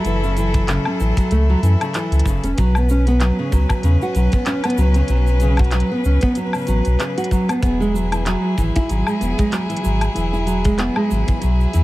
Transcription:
Already playing: string quartet F#3 E4 A4
0.05 sub bass F#1, nylon-string guitar E3, closed hi-hat, cabasa
0.24 nylon-string guitar C#3, cabasa
0.37 nylon-string guitar E3, closed hi-hat, cabasa
0.54 kick, closed hi-hat, cabasa
0.68 nylon-string guitar C#3, clap, closed hi-hat, cabasa
0.85 nylon-string guitar C#4, low woodblock
1.00 sub bass A1, nylon-string guitar E3, cabasa
1.17 nylon-string guitar F#3, kick, closed hi-hat, cabasa
1.31 sub bass C#2, nylon-string guitar A3, closed hi-hat, cabasa
1.50 nylon-string guitar F#3
1.62 sub bass F#2, nylon-string guitar E3, closed hi-hat, cabasa
1.81 nylon-string guitar C#3, closed hi-hat, cabasa, low woodblock
1.94 nylon-string guitar E3, clap, closed hi-hat, cabasa
2.11 sub bass C#2, closed hi-hat, cabasa
2.19 closed hi-hat
2.26 sub bass F#1, nylon-string guitar C#3, kick, cabasa
2.43 sub bass E1, nylon-string guitar C#4, closed hi-hat, cabasa
2.57 sub bass B1, string quartet F#3 C#4 B4, nylon-string guitar F#3, kick, closed hi-hat, cabasa
2.75 nylon-string guitar B3, cabasa, low woodblock
2.89 nylon-string guitar C#4, cabasa
3.07 nylon-string guitar B3, closed hi-hat, cabasa
3.20 nylon-string guitar F#3, clap, closed hi-hat, cabasa
3.39 nylon-string guitar C#3
3.52 sub bass C#2, nylon-string guitar F#3, kick, cabasa
3.69 kick, cabasa, low woodblock
3.83 sub bass E2, nylon-string guitar C#3, closed hi-hat, cabasa
4.01 nylon-string guitar F#4, cabasa
4.15 sub bass B1, nylon-string guitar F#3, closed hi-hat, cabasa
4.32 nylon-string guitar B3, kick, closed hi-hat, cabasa
4.46 nylon-string guitar C#4, clap, closed hi-hat, cabasa
4.64 nylon-string guitar B3, closed hi-hat, cabasa, low woodblock
4.70 closed hi-hat
4.78 sub bass C#2, nylon-string guitar F#3, cabasa
4.94 nylon-string guitar C#3, closed hi-hat, cabasa
5.08 sub bass B1, nylon-string guitar F#3, closed hi-hat, cabasa
5.27 cabasa
5.40 nylon-string guitar C#3, closed hi-hat, cabasa
5.57 nylon-string guitar F#4, kick, closed hi-hat, low woodblock
5.64 closed hi-hat
5.71 nylon-string guitar F#3, clap, closed hi-hat, cabasa
5.80 closed hi-hat
5.92 nylon-string guitar B3
6.04 sub bass C#2, nylon-string guitar C#4, cabasa
6.21 nylon-string guitar B3, kick, closed hi-hat, cabasa
6.35 nylon-string guitar F#3, closed hi-hat, cabasa
6.53 nylon-string guitar C#3, cabasa, low woodblock
6.58 cabasa
6.61 cabasa
6.65 nylon-string guitar F#3, closed hi-hat, cabasa
6.68 sub bass A1, cabasa
6.85 sub bass B1, closed hi-hat, cabasa
7.00 nylon-string guitar C#3, clap, closed hi-hat, cabasa
7.18 nylon-string guitar F#4, closed hi-hat, cabasa
7.24 closed hi-hat
7.31 nylon-string guitar F#3, kick, cabasa
7.49 nylon-string guitar B3, closed hi-hat, cabasa, low woodblock
7.62 sub bass E1, nylon-string guitar B3, string quartet E4 G#4, kick, closed hi-hat, cabasa
7.80 nylon-string guitar G#3, cabasa
7.94 nylon-string guitar F#3, cabasa
8.12 nylon-string guitar E3, closed hi-hat, cabasa, low woodblock
8.26 nylon-string guitar F#3, clap, closed hi-hat, cabasa
8.58 sub bass G#1, nylon-string guitar E3, kick, cabasa
8.76 nylon-string guitar E4, kick, closed hi-hat, cabasa
8.89 sub bass G#1, nylon-string guitar F#3, closed hi-hat, cabasa
9.07 nylon-string guitar G#3, cabasa, low woodblock
9.21 sub bass E1, nylon-string guitar B3, closed hi-hat, cabasa
9.38 nylon-string guitar G#3, kick, closed hi-hat, cabasa
9.52 nylon-string guitar F#3, clap, closed hi-hat, cabasa
9.69 nylon-string guitar E3, closed hi-hat, cabasa
9.77 closed hi-hat
9.83 sub bass G#1, nylon-string guitar F#3, cabasa
10.01 closed hi-hat, cabasa, low woodblock
10.15 sub bass E1, nylon-string guitar E3, closed hi-hat, cabasa
10.33 nylon-string guitar E4, cabasa
10.46 nylon-string guitar F#3, closed hi-hat, cabasa
10.65 nylon-string guitar G#3, kick, closed hi-hat, cabasa
10.78 nylon-string guitar B3, clap, closed hi-hat, cabasa
10.96 nylon-string guitar G#3, low woodblock
11.10 sub bass G#1, nylon-string guitar F#3, cabasa
11.27 nylon-string guitar E3, kick, closed hi-hat, cabasa
11.41 sub bass B1, nylon-string guitar F#3, closed hi-hat, cabasa
11.60 cabasa
11.73 sub bass E2, nylon-string guitar E3, closed hi-hat, cabasa

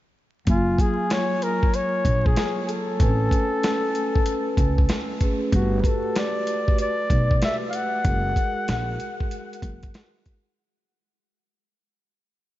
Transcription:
0.45 upright bass F#1, vibraphone F#3 A#3 F4, kick, closed hi-hat
0.49 flugelhorn F4, vibraphone G#5
0.79 flugelhorn G#4, kick, closed hi-hat
1.10 flugelhorn C#5, snare, closed hi-hat
1.42 flugelhorn A#4, closed hi-hat
1.63 kick
1.74 flugelhorn C#5, closed hi-hat
2.05 upright bass A#1, kick, closed hi-hat
2.26 flugelhorn G#4, kick
2.36 snare, closed hi-hat
2.65 flugelhorn G#4 A4, closed hi-hat
2.97 upright bass A1, vibraphone A3 C4 G#5, kick, closed hi-hat
3.02 vibraphone C#4 B4
3.31 kick, closed hi-hat
3.63 snare, closed hi-hat
3.95 closed hi-hat
4.16 kick
4.26 closed hi-hat
4.57 upright bass C#2, kick, closed hi-hat
4.78 kick
4.89 snare, closed hi-hat
5.20 vibraphone A3 C#4 G#4 B4, kick, closed hi-hat
5.51 upright bass G1, vibraphone A3 F#4 G4 B4, flugelhorn F#4, kick, closed hi-hat
5.81 flugelhorn B4, kick, closed hi-hat
5.86 flugelhorn A4
6.16 flugelhorn D5, snare, closed hi-hat
6.47 closed hi-hat
6.68 kick
6.78 flugelhorn D5, closed hi-hat
7.10 upright bass B1, kick, closed hi-hat
7.31 kick
7.42 flugelhorn E5, snare, closed hi-hat
7.70 flugelhorn F5, closed hi-hat
7.75 flugelhorn F#5
8.02 upright bass F#1, vibraphone G#3 F#4 G#4, kick, closed hi-hat
8.07 vibraphone A#4
8.36 kick, closed hi-hat
8.68 upright bass A#1, snare, closed hi-hat
9.00 closed hi-hat
9.20 kick
9.31 closed hi-hat
9.53 closed hi-hat
9.62 upright bass F#1, kick, closed hi-hat
9.83 kick, closed hi-hat
9.94 snare, closed hi-hat
10.26 kick, closed hi-hat

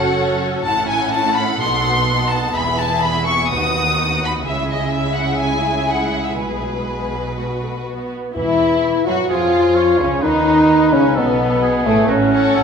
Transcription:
Already playing: double bass section F#1, cello section F#2, viola section C#4 F#4, violin section A4 C#5 F#5
0.66 double bass section A1, cello section A2, viola section C#4 E4, violin section A4 F#5 A5
0.91 violin section G#5
1.15 violin section A5
1.37 violin section B5
1.61 double bass section B1, cello section B2, viola section B3 D#4, violin section C6
2.31 violin section A5
2.55 double bass section E1, cello section E2, viola section E4, violin section G#4 E5 B5
2.80 violin section A5
3.03 violin section B5
3.27 violin section C#6
3.51 cello section D#2, double bass section D#2, viola section D#4, violin section F#4 F#5 D#6
4.24 violin section B5
4.46 double bass section C#2, cello section C#3, viola section G#3 E4, violin section G#4 E5
4.71 violin section D#5
4.93 violin section E5
5.16 violin section F#5
5.41 violin section G#5
5.90 violin section F#5
6.26 violin section E5
6.39 double bass section B1, cello section B2, violin section B4
6.89 viola section G#3
7.14 viola section F#3
7.38 viola section G#3, violin section F#4
7.62 viola section A3
7.87 viola section B3
8.35 timpani E2, double bass section E2, bassoon E3, cello section E3, french horn section E4, violin section E4, clarinet E4, viola section E4
9.06 double bass section F#2, cello section F#3, bassoon F#3, french horn section F#4, violin section F#4, viola section F#4, clarinet F#4
9.29 double bass section F2, cello section F3, bassoon F3, french horn section F4, violin section F4, clarinet F4, viola section F4, oboe G#4
9.75 oboe C#5
9.99 double bass section C#2, cello section C#3, bassoon C#3, french horn section C#4, clarinet C#4, violin section C#4, viola section C#4
10.23 double bass section D#2, cello section D#3, bassoon D#3, french horn section D#4, viola section D#4, violin section D#4, clarinet D#4, oboe B4
10.93 double bass section C#2, cello section C#3, bassoon C#3, viola section C#4, french horn section C#4, clarinet C#4, violin section C#4
11.15 double bass section B1, cello section B2, bassoon B2, french horn section B3, viola section B3, clarinet B3, violin section B3, oboe A4
11.62 oboe G#4
11.86 double bass section A1, cello section A2, bassoon A2, french horn section A3, violin section A3, clarinet A3, viola section A3
12.08 double bass section A1, cello section A2, bassoon F#3, french horn section C#4, viola section C#4, oboe F#4, clarinet C#5
12.32 bassoon F#3, violin section A4 C#5 F#5, clarinet C#5
12.54 double bass section A1, cello section A2, bassoon F#3, oboe A4, clarinet C#5

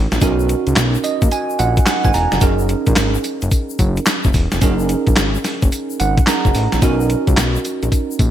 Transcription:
Already playing: tine electric piano C#4 D#4 F#4 A#4
0.12 analog synth bass A#1, snare, closed hi-hat, shaker
0.21 analog synth bass B1, tine electric piano C#4 D#4 F#4 A#4, kick, closed hi-hat, tambourine, shaker
0.40 shaker
0.49 closed hi-hat, shaker
0.67 analog synth bass C#2, closed hi-hat, shaker
0.76 analog synth bass B1, snare, clap, closed hi-hat, tambourine, shaker
0.95 shaker
1.04 tine electric piano D#5, closed hi-hat, tambourine, shaker
1.22 analog synth bass A#1, kick, closed hi-hat, shaker
1.31 tine electric piano G#5, closed hi-hat, tambourine, shaker
1.50 shaker
1.59 analog synth bass A#1, tine electric piano F#5, closed hi-hat, tambourine, shaker
1.77 kick, closed hi-hat, shaker
1.86 tine electric piano F#5, snare, clap, closed hi-hat, tambourine, shaker
2.04 analog synth bass G#1, tine electric piano G#5, kick, shaker
2.13 analog synth bass E1, tine electric piano A#5, open hi-hat, tambourine, shaker
2.32 analog synth bass F1, snare, closed hi-hat, shaker
2.40 analog synth bass F#1, tine electric piano C#4 D#4 G#4 A#4, kick, closed hi-hat, tambourine, shaker
2.59 shaker
2.69 closed hi-hat, shaker
2.86 analog synth bass A#1, kick, closed hi-hat, shaker
2.96 analog synth bass G#1, snare, clap, closed hi-hat, tambourine, shaker
3.14 shaker
3.24 closed hi-hat, tambourine, shaker
3.42 analog synth bass F#1, closed hi-hat, shaker
3.51 kick, closed hi-hat, tambourine, shaker
3.69 shaker
3.79 analog synth bass F#1, kick, closed hi-hat, tambourine, shaker
3.96 closed hi-hat, shaker
4.06 snare, clap, closed hi-hat, tambourine, shaker
4.24 analog synth bass F#1, kick, shaker
4.33 analog synth bass E1, kick, open hi-hat, tambourine, shaker
4.52 analog synth bass F1, snare, closed hi-hat, shaker
4.61 analog synth bass F#1, tine electric piano C#4 D#4 G#4 A#4, kick, closed hi-hat, tambourine, shaker
4.79 shaker
4.89 closed hi-hat, shaker
5.07 analog synth bass A#1, kick, closed hi-hat, shaker
5.16 analog synth bass G#1, snare, clap, closed hi-hat, tambourine, shaker
5.35 shaker
5.44 snare, open hi-hat, tambourine, shaker
5.62 analog synth bass F#1, kick, closed hi-hat, shaker
5.72 closed hi-hat, tambourine, shaker
5.90 shaker
5.99 analog synth bass G#1, tine electric piano F#5, closed hi-hat, tambourine, shaker
6.17 kick, closed hi-hat, shaker
6.27 tine electric piano C#4 D#4 G#4 A#4 A#5, snare, clap, closed hi-hat, tambourine, shaker
6.45 analog synth bass F#1, kick, shaker
6.54 analog synth bass A1, open hi-hat, tambourine, shaker
6.72 analog synth bass A#1, snare, closed hi-hat, shaker
6.82 analog synth bass B1, tine electric piano C#4 D#4 F#4 A#4, kick, closed hi-hat, tambourine, shaker
7.00 shaker
7.10 closed hi-hat, shaker
7.27 analog synth bass C#2, kick, closed hi-hat, shaker
7.37 analog synth bass B1, snare, clap, closed hi-hat, tambourine, shaker
7.55 shaker
7.65 closed hi-hat, tambourine, shaker
7.83 analog synth bass A#1, closed hi-hat, shaker
7.92 kick, closed hi-hat, tambourine, shaker
8.11 shaker
8.19 analog synth bass A#1, kick, closed hi-hat, tambourine, shaker

